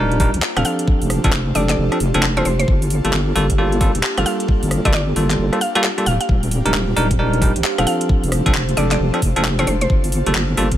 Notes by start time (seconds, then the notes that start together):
Already playing: D#1 G3 A#3 D4 D#4 F4 G4 A#4 C5 F5
0.11 closed hi-hat
0.20 G3 D4 D#4 A#4, kick, open hi-hat
0.34 A#1, closed hi-hat
0.42 clap
0.57 D#1 F3 C4 D4 A4 F5, cross-stick, closed hi-hat
0.65 C4 A4 F5, open hi-hat
0.79 closed hi-hat
0.88 kick
1.02 F1, open hi-hat
1.10 cross-stick, open hi-hat
1.24 F1 F3 C4 D4 A4, kick, closed hi-hat
1.32 F1, clap
1.55 F1 F3 C4 D4 A4 D5, open hi-hat
1.69 D5, clap, closed hi-hat
1.78 F1
1.92 F3 C4 D4 A4, cross-stick, closed hi-hat
2.00 F1, open hi-hat
2.14 F1 F3 C4 D4 A4, closed hi-hat
2.23 clap
2.37 F3 C4 D4 A4 C5, closed hi-hat
2.45 F1 C5, open hi-hat
2.59 C5, closed hi-hat
2.68 G1 A#3 D4, kick
2.82 open hi-hat
2.90 open hi-hat
3.05 G1 G3 A#3 F4 A4, closed hi-hat
3.13 G1, clap
3.36 G1 G3 A#3 F4 A4, open hi-hat
3.50 kick, closed hi-hat
3.58 G3 A#3 F4 A4
3.72 closed hi-hat
3.81 G3 A#3 F4 A4, kick, open hi-hat
3.95 F1, closed hi-hat
4.03 clap
4.17 G1 G3 A#3 F4 A4 F5, cross-stick, closed hi-hat
4.26 F5, open hi-hat
4.40 closed hi-hat
4.48 kick
4.63 G1, open hi-hat
4.71 cross-stick, open hi-hat
4.85 G1 G3 A#3 F4 A4 D5, kick, closed hi-hat
4.93 G1 D5, clap
5.16 G1 G3 A#3 F4 A4, open hi-hat
5.30 clap, closed hi-hat
5.39 G1
5.53 G3 A#3 F4 A4, cross-stick, closed hi-hat
5.61 F5, open hi-hat
5.75 G3 A#3 F4 A4 F5, closed hi-hat
5.84 clap
5.98 G3 A#3 F4 A4, closed hi-hat
6.06 D#1 D4 F4 G4 F5, open hi-hat
6.21 C5 F5, closed hi-hat
6.29 D#1, kick
6.34 F5
6.43 open hi-hat
6.51 open hi-hat
6.66 D#1 G3 D4 D#4 A#4, closed hi-hat
6.74 D#1, clap
6.96 D#1 G3 D4 D#4 A#4, open hi-hat
7.11 kick, closed hi-hat
7.19 G3 D4 D#4 A#4
7.33 closed hi-hat
7.42 G3 D4 D#4 A#4, kick, open hi-hat
7.56 A#1, closed hi-hat
7.64 clap
7.78 D#1 F3 C4 D4 A4 F5, cross-stick, closed hi-hat
7.87 C4 A4 F5, open hi-hat
8.01 closed hi-hat
8.09 kick
8.24 F1, open hi-hat
8.32 cross-stick, open hi-hat
8.46 F1 F3 C4 D4 A4, kick, closed hi-hat
8.54 F1, clap
8.69 closed hi-hat
8.77 F1 F3 C4 D4 A4 D5, open hi-hat
8.91 D5, clap, closed hi-hat
9.00 F1
9.14 F3 C4 D4 A4, cross-stick, closed hi-hat
9.22 F1, kick, open hi-hat
9.36 F1 F3 C4 D4 A4, closed hi-hat
9.45 clap
9.59 F3 C4 D4 A4 C5, closed hi-hat
9.67 F1 C5, open hi-hat
9.81 C5, closed hi-hat
9.90 G1 A#3, kick
10.04 open hi-hat
10.12 open hi-hat
10.26 G1 G3 A#3 F4 A4, closed hi-hat
10.35 G1, clap
10.57 G1 G3 A#3 F4 A4, open hi-hat
10.72 kick, closed hi-hat